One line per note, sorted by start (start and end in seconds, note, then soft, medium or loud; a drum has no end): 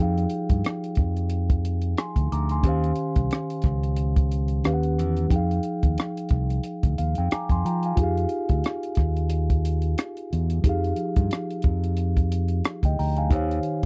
0.00 0.24 F2 medium
0.00 2.58 F3 medium
0.00 2.59 D#4 medium
0.00 2.61 G#4 medium
0.00 2.62 F5 medium
0.00 2.60 G5 medium
0.18 closed hi-hat soft
0.30 closed hi-hat medium
0.49 0.62 G2 medium
0.49 kick medium
0.49 closed hi-hat soft
0.64 cross-stick loud
0.64 closed hi-hat medium
0.84 closed hi-hat soft
0.95 1.94 F2 medium
0.95 kick medium
0.95 closed hi-hat soft
1.17 closed hi-hat soft
1.30 closed hi-hat medium
1.50 kick medium
1.50 closed hi-hat soft
1.65 closed hi-hat medium
1.82 closed hi-hat soft
1.97 2.30 G#5 soft
1.97 2.30 C6 medium
1.97 cross-stick loud
1.97 closed hi-hat medium
2.16 2.28 D2 medium
2.16 kick medium
2.16 closed hi-hat soft
2.32 2.64 D2 medium
2.32 2.50 A#5 medium
2.32 2.50 D6 medium
2.32 closed hi-hat medium
2.49 2.83 G#5 medium
2.49 2.82 C6 medium
2.49 closed hi-hat soft
2.61 2.91 D#2 medium
2.61 4.58 D#3 medium
2.61 4.59 C#4 medium
2.61 kick medium
2.61 closed hi-hat medium
2.65 4.60 G4 medium
2.65 4.61 C5 medium
2.65 4.62 F5 medium
2.84 closed hi-hat soft
2.96 closed hi-hat soft
3.16 3.28 C2 medium
3.16 kick medium
3.16 closed hi-hat soft
3.31 cross-stick loud
3.31 closed hi-hat medium
3.50 closed hi-hat soft
3.62 4.60 C#2 medium
3.62 kick medium
3.62 cross-stick soft
3.62 closed hi-hat medium
3.83 closed hi-hat soft
3.96 closed hi-hat medium
4.16 kick medium
4.16 closed hi-hat soft
4.32 closed hi-hat medium
4.48 closed hi-hat soft
4.63 4.99 D#2 medium
4.63 5.30 D#3 medium
4.63 5.31 C#4 medium
4.63 5.31 G4 medium
4.63 5.32 B4 soft
4.63 4.73 F5 medium
4.63 cross-stick medium
4.63 closed hi-hat medium
4.74 5.35 F#5 medium
4.83 closed hi-hat soft
4.99 5.25 E2 medium
4.99 cross-stick soft
4.99 closed hi-hat medium
5.17 closed hi-hat soft
5.28 5.58 F2 medium
5.28 7.59 F3 medium
5.28 7.60 D#4 medium
5.28 7.17 G5 medium
5.28 kick medium
5.28 closed hi-hat medium
5.34 7.61 G#4 medium
5.34 6.97 F5 medium
5.51 closed hi-hat soft
5.63 closed hi-hat medium
5.83 5.95 D#2 medium
5.83 kick medium
5.83 closed hi-hat soft
5.98 cross-stick medium
5.98 closed hi-hat medium
6.17 closed hi-hat soft
6.29 6.58 C2 medium
6.29 kick medium
6.29 closed hi-hat soft
6.50 closed hi-hat soft
6.63 closed hi-hat medium
6.83 6.95 D2 medium
6.83 kick medium
6.83 closed hi-hat soft
6.98 7.14 D#2 medium
6.98 7.16 F5 medium
6.98 closed hi-hat medium
7.15 7.29 F2 medium
7.15 7.30 G5 medium
7.15 closed hi-hat soft
7.31 7.51 G#5 medium
7.31 7.50 A#5 soft
7.31 7.50 D6 medium
7.31 muted fingered electric bass stroke soft
7.31 cross-stick medium
7.31 closed hi-hat medium
7.49 7.61 F2 medium
7.49 7.64 G#5 medium
7.49 7.64 C6 medium
7.49 kick medium
7.49 closed hi-hat soft
7.65 7.91 F3 medium
7.65 7.84 G5 soft
7.65 7.83 A#5 medium
7.65 closed hi-hat medium
7.83 8.02 F5 medium
7.83 8.16 G#5 medium
7.83 closed hi-hat soft
7.96 8.25 F2 medium
7.96 10.60 D#4 medium
7.96 10.59 F4 medium
7.96 10.61 G4 medium
7.96 kick medium
7.96 closed hi-hat medium
8.01 10.62 G#4 medium
8.01 10.63 F5 medium
8.17 closed hi-hat soft
8.29 closed hi-hat medium
8.49 8.62 D2 medium
8.49 kick medium
8.49 closed hi-hat soft
8.64 cross-stick medium
8.64 closed hi-hat medium
8.83 closed hi-hat soft
8.95 9.94 D#2 medium
8.95 kick medium
8.95 cross-stick soft
8.95 closed hi-hat medium
9.16 closed hi-hat soft
9.30 closed hi-hat medium
9.50 kick medium
9.50 closed hi-hat soft
9.65 closed hi-hat medium
9.82 closed hi-hat soft
9.98 cross-stick medium
9.98 closed hi-hat medium
10.17 closed hi-hat soft
10.33 10.59 E2 medium
10.33 closed hi-hat medium
10.50 closed hi-hat soft
10.62 10.91 F2 medium
10.62 13.25 F3 medium
10.62 13.26 D#4 medium
10.62 13.27 G4 medium
10.62 kick medium
10.62 closed hi-hat medium
10.67 13.28 G#4 medium
10.67 12.63 F5 medium
10.84 closed hi-hat soft
10.96 closed hi-hat medium
11.16 11.28 G2 medium
11.16 kick medium
11.16 closed hi-hat soft
11.31 cross-stick medium
11.31 closed hi-hat medium
11.50 closed hi-hat soft
11.62 12.60 F2 medium
11.62 kick medium
11.62 closed hi-hat soft
11.84 closed hi-hat soft
11.97 closed hi-hat medium
12.17 kick medium
12.17 closed hi-hat soft
12.32 closed hi-hat medium
12.48 closed hi-hat soft
12.65 cross-stick loud
12.65 closed hi-hat medium
12.83 12.95 D2 medium
12.83 12.98 D#5 medium
12.83 12.97 G5 medium
12.83 kick medium
12.83 closed hi-hat soft
12.99 13.32 D2 medium
12.99 13.17 G5 medium
12.99 13.16 A#5 medium
12.99 open hi-hat soft
13.16 13.35 F5 medium
13.16 13.49 G#5 medium
13.16 closed hi-hat soft
13.28 13.58 D#2 medium
13.28 13.86 D#3 medium
13.28 13.86 D#4 medium
13.28 13.86 G4 medium
13.28 kick loud
13.28 closed hi-hat medium
13.33 13.86 C5 medium
13.33 13.86 C#5 medium
13.33 13.86 F5 medium
13.51 closed hi-hat soft
13.63 closed hi-hat soft